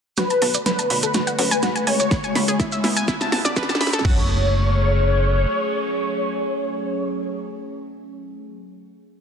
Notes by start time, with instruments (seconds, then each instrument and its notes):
0.17 ambient pad A3 F#4, synth pluck F#4, analog synth lead B4, snare, closed hi-hat, maracas
0.30 synth pluck A5, closed hi-hat, maracas
0.42 analog synth bass B1, synth pluck A5, open hi-hat
0.54 synth pluck D5, closed hi-hat, maracas
0.66 synth pluck B4, analog synth lead B4, snare, closed hi-hat, maracas
0.79 synth pluck A5, closed hi-hat, maracas
0.90 analog synth bass B1, synth pluck B5, open hi-hat
1.03 synth pluck A4, closed hi-hat, maracas
1.14 ambient pad G#3, synth pluck F#4, snare, closed hi-hat, maracas
1.27 synth pluck F#5, closed hi-hat, maracas
1.39 analog synth bass F#2, synth pluck F#4, analog synth lead B4, open hi-hat
1.51 synth pluck G#5, closed hi-hat, maracas
1.63 synth pluck F#4, snare, closed hi-hat, maracas
1.76 synth pluck G#5, closed hi-hat, maracas
1.87 analog synth bass C#2, analog synth lead C#5, synth pluck G#5, open hi-hat
2.00 synth pluck C#5, closed hi-hat, maracas
2.11 ambient pad B3 E4, synth pluck B4, kick, snare, closed hi-hat, maracas
2.24 synth pluck G#5, closed hi-hat, maracas
2.35 analog synth bass C#2, synth pluck B5, snare, open hi-hat
2.48 synth pluck G#4, closed hi-hat, maracas
2.60 synth pluck E4, kick, snare, closed hi-hat, maracas
2.72 synth pluck E5, closed hi-hat, maracas
2.84 analog synth bass C#2, synth pluck E4, snare, open hi-hat
2.97 synth pluck G#5, closed hi-hat, maracas
3.08 synth pluck E4, kick, snare, closed hi-hat, maracas
3.21 synth pluck A5, snare, closed hi-hat, maracas
3.32 analog synth bass E1, synth pluck A5, snare, open hi-hat
3.45 synth pluck D5, snare, closed hi-hat, maracas
3.56 synth pluck B4, kick, snare, closed hi-hat, maracas
3.63 snare
3.69 synth pluck A5, snare, closed hi-hat, maracas
3.75 snare
3.81 analog synth bass A1, synth pluck B5, snare, open hi-hat
3.87 snare
3.93 synth pluck A4, snare, closed hi-hat, maracas
3.99 snare
4.05 analog synth bass F#1, ambient pad F#3 A3 C#4 G#4, synth pluck F#4, analog synth lead C#5, kick, floor tom, crash